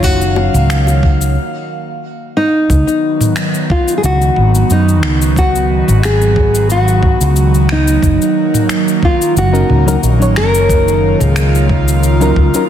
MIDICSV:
0, 0, Header, 1, 6, 480
1, 0, Start_track
1, 0, Key_signature, 6, "major"
1, 0, Tempo, 666667
1, 20, Time_signature, 4, 2, 24, 8
1, 9138, End_track
2, 0, Start_track
2, 0, Title_t, "Nylon-string guitar"
2, 0, Program_c, 0, 24
2, 27, Note_on_c, 0, 66, 93
2, 1704, Note_off_c, 0, 66, 0
2, 1705, Note_on_c, 0, 63, 106
2, 2394, Note_off_c, 0, 63, 0
2, 2673, Note_on_c, 0, 65, 86
2, 2860, Note_off_c, 0, 65, 0
2, 2863, Note_on_c, 0, 68, 74
2, 2905, Note_off_c, 0, 68, 0
2, 2919, Note_on_c, 0, 66, 88
2, 3398, Note_on_c, 0, 63, 91
2, 3404, Note_off_c, 0, 66, 0
2, 3877, Note_on_c, 0, 66, 103
2, 3883, Note_off_c, 0, 63, 0
2, 4354, Note_off_c, 0, 66, 0
2, 4357, Note_on_c, 0, 68, 108
2, 4832, Note_off_c, 0, 68, 0
2, 4835, Note_on_c, 0, 66, 105
2, 5561, Note_on_c, 0, 63, 91
2, 5569, Note_off_c, 0, 66, 0
2, 6514, Note_on_c, 0, 65, 92
2, 6539, Note_off_c, 0, 63, 0
2, 6753, Note_off_c, 0, 65, 0
2, 6756, Note_on_c, 0, 66, 86
2, 7199, Note_off_c, 0, 66, 0
2, 7469, Note_on_c, 0, 70, 110
2, 8096, Note_off_c, 0, 70, 0
2, 8096, Note_on_c, 0, 68, 110
2, 8396, Note_off_c, 0, 68, 0
2, 9138, End_track
3, 0, Start_track
3, 0, Title_t, "FM electric piano"
3, 0, Program_c, 1, 5
3, 0, Note_on_c, 1, 54, 84
3, 0, Note_on_c, 1, 61, 74
3, 0, Note_on_c, 1, 63, 78
3, 0, Note_on_c, 1, 73, 92
3, 972, Note_off_c, 1, 54, 0
3, 975, Note_off_c, 1, 61, 0
3, 979, Note_off_c, 1, 63, 0
3, 984, Note_off_c, 1, 73, 0
3, 6856, Note_on_c, 1, 54, 89
3, 6861, Note_on_c, 1, 61, 79
3, 6863, Note_on_c, 1, 63, 83
3, 6865, Note_on_c, 1, 70, 97
3, 7072, Note_off_c, 1, 54, 0
3, 7074, Note_off_c, 1, 61, 0
3, 7075, Note_off_c, 1, 63, 0
3, 7076, Note_off_c, 1, 70, 0
3, 7096, Note_on_c, 1, 54, 83
3, 7104, Note_on_c, 1, 61, 80
3, 7108, Note_on_c, 1, 63, 76
3, 7111, Note_on_c, 1, 70, 95
3, 7163, Note_off_c, 1, 54, 0
3, 7167, Note_off_c, 1, 61, 0
3, 7170, Note_off_c, 1, 63, 0
3, 7171, Note_off_c, 1, 70, 0
3, 7333, Note_on_c, 1, 54, 84
3, 7342, Note_on_c, 1, 61, 76
3, 7350, Note_on_c, 1, 63, 76
3, 7360, Note_on_c, 1, 73, 89
3, 8751, Note_off_c, 1, 54, 0
3, 8755, Note_off_c, 1, 61, 0
3, 8759, Note_off_c, 1, 63, 0
3, 8764, Note_off_c, 1, 73, 0
3, 8785, Note_on_c, 1, 54, 86
3, 8789, Note_on_c, 1, 61, 75
3, 8793, Note_on_c, 1, 63, 81
3, 8799, Note_on_c, 1, 70, 95
3, 8996, Note_off_c, 1, 54, 0
3, 8998, Note_off_c, 1, 61, 0
3, 9000, Note_off_c, 1, 63, 0
3, 9003, Note_off_c, 1, 70, 0
3, 9029, Note_on_c, 1, 54, 80
3, 9031, Note_on_c, 1, 61, 76
3, 9034, Note_on_c, 1, 63, 71
3, 9042, Note_on_c, 1, 70, 90
3, 9090, Note_off_c, 1, 54, 0
3, 9091, Note_off_c, 1, 61, 0
3, 9093, Note_off_c, 1, 63, 0
3, 9097, Note_off_c, 1, 70, 0
3, 9138, End_track
4, 0, Start_track
4, 0, Title_t, "Analog synth pad"
4, 0, Program_c, 2, 89
4, 0, Note_on_c, 2, 51, 76
4, 0, Note_on_c, 2, 58, 73
4, 19, Note_on_c, 2, 77, 85
4, 945, Note_off_c, 2, 51, 0
4, 946, Note_off_c, 2, 58, 0
4, 970, Note_off_c, 2, 77, 0
4, 1941, Note_on_c, 2, 54, 86
4, 1941, Note_on_c, 2, 59, 74
4, 1947, Note_on_c, 2, 51, 81
4, 5752, Note_off_c, 2, 59, 0
4, 5755, Note_off_c, 2, 51, 0
4, 5782, Note_on_c, 2, 58, 68
4, 5783, Note_on_c, 2, 51, 84
4, 7672, Note_off_c, 2, 54, 0
4, 7704, Note_on_c, 2, 65, 88
4, 9138, Note_off_c, 2, 51, 0
4, 9138, Note_off_c, 2, 58, 0
4, 9138, Note_off_c, 2, 65, 0
4, 9138, End_track
5, 0, Start_track
5, 0, Title_t, "Fretless electric bass"
5, 0, Program_c, 3, 35
5, 0, Note_on_c, 3, 30, 80
5, 341, Note_off_c, 3, 30, 0
5, 389, Note_on_c, 3, 37, 83
5, 980, Note_off_c, 3, 37, 0
5, 1941, Note_on_c, 3, 37, 90
5, 2039, Note_off_c, 3, 37, 0
5, 2906, Note_on_c, 3, 37, 87
5, 3089, Note_off_c, 3, 37, 0
5, 3142, Note_on_c, 3, 32, 82
5, 3327, Note_off_c, 3, 32, 0
5, 3386, Note_on_c, 3, 42, 78
5, 3630, Note_off_c, 3, 42, 0
5, 3630, Note_on_c, 3, 37, 79
5, 4184, Note_off_c, 3, 37, 0
5, 4235, Note_on_c, 3, 32, 85
5, 5142, Note_off_c, 3, 32, 0
5, 5189, Note_on_c, 3, 37, 94
5, 5736, Note_off_c, 3, 37, 0
5, 5778, Note_on_c, 3, 30, 91
5, 5877, Note_off_c, 3, 30, 0
5, 6743, Note_on_c, 3, 30, 92
5, 6928, Note_off_c, 3, 30, 0
5, 6985, Note_on_c, 3, 37, 88
5, 7168, Note_off_c, 3, 37, 0
5, 7221, Note_on_c, 3, 34, 75
5, 7461, Note_off_c, 3, 34, 0
5, 7461, Note_on_c, 3, 30, 81
5, 8019, Note_off_c, 3, 30, 0
5, 8072, Note_on_c, 3, 37, 82
5, 8896, Note_off_c, 3, 37, 0
5, 8900, Note_on_c, 3, 37, 72
5, 8998, Note_off_c, 3, 37, 0
5, 9138, End_track
6, 0, Start_track
6, 0, Title_t, "Drums"
6, 21, Note_on_c, 9, 36, 102
6, 22, Note_on_c, 9, 82, 49
6, 93, Note_off_c, 9, 36, 0
6, 94, Note_off_c, 9, 82, 0
6, 154, Note_on_c, 9, 82, 32
6, 226, Note_off_c, 9, 82, 0
6, 261, Note_on_c, 9, 60, 55
6, 333, Note_off_c, 9, 60, 0
6, 392, Note_on_c, 9, 45, 70
6, 395, Note_on_c, 9, 82, 60
6, 464, Note_off_c, 9, 45, 0
6, 467, Note_off_c, 9, 82, 0
6, 503, Note_on_c, 9, 26, 78
6, 507, Note_on_c, 9, 82, 51
6, 575, Note_off_c, 9, 26, 0
6, 579, Note_off_c, 9, 82, 0
6, 626, Note_on_c, 9, 60, 33
6, 634, Note_on_c, 9, 82, 31
6, 698, Note_off_c, 9, 60, 0
6, 706, Note_off_c, 9, 82, 0
6, 741, Note_on_c, 9, 36, 95
6, 813, Note_off_c, 9, 36, 0
6, 874, Note_on_c, 9, 82, 60
6, 946, Note_off_c, 9, 82, 0
6, 1943, Note_on_c, 9, 36, 113
6, 1946, Note_on_c, 9, 82, 50
6, 2015, Note_off_c, 9, 36, 0
6, 2018, Note_off_c, 9, 82, 0
6, 2074, Note_on_c, 9, 82, 33
6, 2146, Note_off_c, 9, 82, 0
6, 2309, Note_on_c, 9, 45, 72
6, 2312, Note_on_c, 9, 82, 61
6, 2381, Note_off_c, 9, 45, 0
6, 2384, Note_off_c, 9, 82, 0
6, 2418, Note_on_c, 9, 26, 76
6, 2421, Note_on_c, 9, 82, 54
6, 2490, Note_off_c, 9, 26, 0
6, 2493, Note_off_c, 9, 82, 0
6, 2552, Note_on_c, 9, 82, 34
6, 2624, Note_off_c, 9, 82, 0
6, 2663, Note_on_c, 9, 36, 107
6, 2735, Note_off_c, 9, 36, 0
6, 2794, Note_on_c, 9, 82, 61
6, 2866, Note_off_c, 9, 82, 0
6, 2906, Note_on_c, 9, 82, 53
6, 2978, Note_off_c, 9, 82, 0
6, 3036, Note_on_c, 9, 82, 33
6, 3108, Note_off_c, 9, 82, 0
6, 3142, Note_on_c, 9, 45, 82
6, 3214, Note_off_c, 9, 45, 0
6, 3275, Note_on_c, 9, 82, 63
6, 3347, Note_off_c, 9, 82, 0
6, 3384, Note_on_c, 9, 82, 54
6, 3456, Note_off_c, 9, 82, 0
6, 3518, Note_on_c, 9, 82, 32
6, 3590, Note_off_c, 9, 82, 0
6, 3621, Note_on_c, 9, 26, 81
6, 3693, Note_off_c, 9, 26, 0
6, 3756, Note_on_c, 9, 82, 62
6, 3828, Note_off_c, 9, 82, 0
6, 3862, Note_on_c, 9, 36, 113
6, 3868, Note_on_c, 9, 82, 54
6, 3934, Note_off_c, 9, 36, 0
6, 3940, Note_off_c, 9, 82, 0
6, 3999, Note_on_c, 9, 82, 34
6, 4071, Note_off_c, 9, 82, 0
6, 4234, Note_on_c, 9, 45, 65
6, 4238, Note_on_c, 9, 82, 59
6, 4306, Note_off_c, 9, 45, 0
6, 4310, Note_off_c, 9, 82, 0
6, 4345, Note_on_c, 9, 26, 81
6, 4348, Note_on_c, 9, 82, 55
6, 4417, Note_off_c, 9, 26, 0
6, 4420, Note_off_c, 9, 82, 0
6, 4475, Note_on_c, 9, 82, 32
6, 4547, Note_off_c, 9, 82, 0
6, 4579, Note_on_c, 9, 36, 110
6, 4651, Note_off_c, 9, 36, 0
6, 4714, Note_on_c, 9, 82, 67
6, 4786, Note_off_c, 9, 82, 0
6, 4823, Note_on_c, 9, 82, 55
6, 4895, Note_off_c, 9, 82, 0
6, 4953, Note_on_c, 9, 82, 33
6, 5025, Note_off_c, 9, 82, 0
6, 5059, Note_on_c, 9, 36, 112
6, 5131, Note_off_c, 9, 36, 0
6, 5191, Note_on_c, 9, 82, 68
6, 5263, Note_off_c, 9, 82, 0
6, 5300, Note_on_c, 9, 82, 54
6, 5372, Note_off_c, 9, 82, 0
6, 5433, Note_on_c, 9, 82, 33
6, 5505, Note_off_c, 9, 82, 0
6, 5537, Note_on_c, 9, 26, 81
6, 5609, Note_off_c, 9, 26, 0
6, 5671, Note_on_c, 9, 82, 69
6, 5743, Note_off_c, 9, 82, 0
6, 5778, Note_on_c, 9, 36, 112
6, 5783, Note_on_c, 9, 82, 57
6, 5850, Note_off_c, 9, 36, 0
6, 5855, Note_off_c, 9, 82, 0
6, 5916, Note_on_c, 9, 82, 33
6, 5988, Note_off_c, 9, 82, 0
6, 6151, Note_on_c, 9, 45, 66
6, 6154, Note_on_c, 9, 82, 64
6, 6223, Note_off_c, 9, 45, 0
6, 6226, Note_off_c, 9, 82, 0
6, 6259, Note_on_c, 9, 26, 74
6, 6263, Note_on_c, 9, 82, 59
6, 6331, Note_off_c, 9, 26, 0
6, 6335, Note_off_c, 9, 82, 0
6, 6394, Note_on_c, 9, 82, 37
6, 6466, Note_off_c, 9, 82, 0
6, 6499, Note_on_c, 9, 36, 101
6, 6571, Note_off_c, 9, 36, 0
6, 6636, Note_on_c, 9, 82, 66
6, 6708, Note_off_c, 9, 82, 0
6, 6745, Note_on_c, 9, 82, 56
6, 6817, Note_off_c, 9, 82, 0
6, 6874, Note_on_c, 9, 82, 31
6, 6946, Note_off_c, 9, 82, 0
6, 6981, Note_on_c, 9, 45, 77
6, 7053, Note_off_c, 9, 45, 0
6, 7114, Note_on_c, 9, 82, 65
6, 7186, Note_off_c, 9, 82, 0
6, 7225, Note_on_c, 9, 82, 59
6, 7297, Note_off_c, 9, 82, 0
6, 7357, Note_on_c, 9, 82, 35
6, 7429, Note_off_c, 9, 82, 0
6, 7461, Note_on_c, 9, 26, 81
6, 7533, Note_off_c, 9, 26, 0
6, 7593, Note_on_c, 9, 82, 68
6, 7665, Note_off_c, 9, 82, 0
6, 7700, Note_on_c, 9, 36, 107
6, 7704, Note_on_c, 9, 82, 56
6, 7772, Note_off_c, 9, 36, 0
6, 7776, Note_off_c, 9, 82, 0
6, 7834, Note_on_c, 9, 82, 34
6, 7906, Note_off_c, 9, 82, 0
6, 8068, Note_on_c, 9, 45, 70
6, 8071, Note_on_c, 9, 82, 61
6, 8140, Note_off_c, 9, 45, 0
6, 8143, Note_off_c, 9, 82, 0
6, 8179, Note_on_c, 9, 26, 75
6, 8182, Note_on_c, 9, 82, 58
6, 8251, Note_off_c, 9, 26, 0
6, 8254, Note_off_c, 9, 82, 0
6, 8316, Note_on_c, 9, 82, 34
6, 8388, Note_off_c, 9, 82, 0
6, 8420, Note_on_c, 9, 36, 105
6, 8492, Note_off_c, 9, 36, 0
6, 8554, Note_on_c, 9, 82, 65
6, 8626, Note_off_c, 9, 82, 0
6, 8664, Note_on_c, 9, 82, 56
6, 8736, Note_off_c, 9, 82, 0
6, 8793, Note_on_c, 9, 82, 32
6, 8865, Note_off_c, 9, 82, 0
6, 8901, Note_on_c, 9, 36, 106
6, 8973, Note_off_c, 9, 36, 0
6, 9030, Note_on_c, 9, 82, 68
6, 9102, Note_off_c, 9, 82, 0
6, 9138, End_track
0, 0, End_of_file